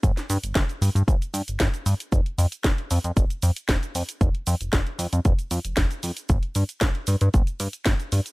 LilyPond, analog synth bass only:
\new Staff \with { instrumentName = "Analog synth bass" } { \clef bass \time 4/4 \key g \dorian \tempo 4 = 115 g,,16 r16 g,16 g,,16 g,,16 r16 g,16 g,16 g,,16 r16 g,16 g,,16 g,,16 r16 g,16 r16 | f,,16 r16 f,16 r16 f,,16 r16 f,16 f,16 f,,16 r16 f,16 r16 f,,16 r16 f,16 r16 | f,,16 r16 f,16 f,,16 f,,16 r16 f,16 f,16 f,,16 r16 f,16 f,,16 f,,16 r16 f,16 r16 | g,,16 r16 g,16 r16 g,,16 r16 g,16 g,16 g,,16 r16 g,16 r16 g,,16 r16 g,16 r16 | }